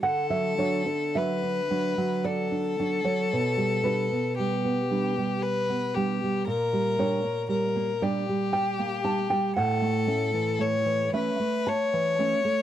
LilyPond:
<<
  \new Staff \with { instrumentName = "Violin" } { \time 3/4 \key d \major \tempo 4 = 57 a'4 b'4 a'4~ | a'4 g'4 b'8 g'8 | bes'4 bes'8 g'4. | a'4 cis''8 b'8 cis''4 | }
  \new Staff \with { instrumentName = "Nylon-string guitar" } { \time 3/4 \key d \major << { fis''16 e''16 cis''16 d''16 e''4 d''8. cis''16~ | cis''8 b'4 r4. | r8 cis''4 d''8 g''8 a''16 g''16 | fis''4. e''8 a''4 | } \\ { d16 fis16 <fis d'>16 d'16 fis16 d'16 <fis d'>16 fis8 d'16 <fis d'>16 fis16 | b,16 g16 <g d'>16 b16 g16 b16 <g d'>16 g8 b16 <g d'>16 g16 | bes,16 g16 <g d'>16 bes16 g16 bes16 <g d'>16 g8 bes16 <g d'>16 g16 | a,16 a16 <a cis'>16 e16 a16 e16 <a cis'>16 a8 e16 <a cis'>16 a16 | } >> }
>>